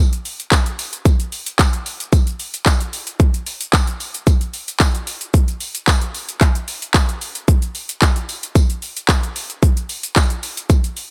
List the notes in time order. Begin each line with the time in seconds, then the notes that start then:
0.13 closed hi-hat, shaker
0.25 open hi-hat, shaker
0.40 closed hi-hat, shaker
0.52 kick, clap, tambourine, shaker
0.66 closed hi-hat, shaker
0.79 open hi-hat, tambourine, shaker
0.93 closed hi-hat, shaker
1.05 kick, tambourine, shaker
1.20 closed hi-hat, shaker
1.32 open hi-hat, tambourine, shaker
1.46 closed hi-hat, shaker
1.59 kick, clap, tambourine, shaker
1.73 closed hi-hat, shaker
1.86 open hi-hat, tambourine, shaker
2.00 closed hi-hat, shaker
2.13 kick, tambourine, shaker
2.27 closed hi-hat, shaker
2.40 open hi-hat, shaker
2.54 closed hi-hat, shaker
2.66 kick, clap, tambourine, shaker
2.81 closed hi-hat, shaker
2.93 open hi-hat, tambourine, shaker
3.07 closed hi-hat, shaker
3.20 kick, shaker
3.34 closed hi-hat, shaker
3.46 open hi-hat, tambourine, shaker
3.61 closed hi-hat, shaker
3.73 kick, clap, tambourine, shaker
3.87 closed hi-hat, shaker
4.00 open hi-hat, tambourine, shaker
4.14 closed hi-hat, shaker
4.27 kick, tambourine, shaker
4.41 closed hi-hat, shaker
4.53 open hi-hat, tambourine, shaker
4.68 closed hi-hat, shaker
4.80 kick, clap, tambourine, shaker
4.95 closed hi-hat, shaker
5.07 open hi-hat, tambourine, shaker
5.21 closed hi-hat, shaker
5.34 kick, shaker
5.48 closed hi-hat, shaker
5.60 open hi-hat, tambourine, shaker
5.75 closed hi-hat, shaker
5.87 kick, clap, tambourine, shaker
6.02 closed hi-hat, shaker
6.14 open hi-hat, tambourine, shaker
6.29 closed hi-hat, shaker
6.41 kick, clap, tambourine, shaker
6.55 closed hi-hat, shaker
6.68 open hi-hat, tambourine, shaker
6.82 closed hi-hat, shaker
6.94 kick, clap, tambourine, shaker
7.09 closed hi-hat, shaker
7.21 open hi-hat, tambourine, shaker
7.35 closed hi-hat, shaker
7.48 kick, shaker
7.62 closed hi-hat, shaker
7.75 open hi-hat, tambourine, shaker
7.89 closed hi-hat, shaker
8.02 kick, clap, tambourine, shaker
8.16 closed hi-hat, shaker
8.29 open hi-hat, tambourine, shaker
8.43 closed hi-hat, shaker
8.55 kick, tambourine, shaker
8.70 closed hi-hat, shaker
8.82 open hi-hat, tambourine, shaker
8.97 closed hi-hat, shaker
9.09 kick, clap, tambourine, shaker
9.23 closed hi-hat, shaker
9.36 open hi-hat, tambourine, shaker
9.50 closed hi-hat, shaker
9.63 kick, shaker
9.77 closed hi-hat, shaker
9.89 open hi-hat, tambourine, shaker
10.03 closed hi-hat, shaker
10.16 kick, clap, tambourine, shaker
10.30 closed hi-hat, shaker
10.43 open hi-hat, tambourine, shaker
10.57 closed hi-hat, shaker
10.70 kick, tambourine, shaker
10.84 closed hi-hat, shaker
10.96 open hi-hat, tambourine, shaker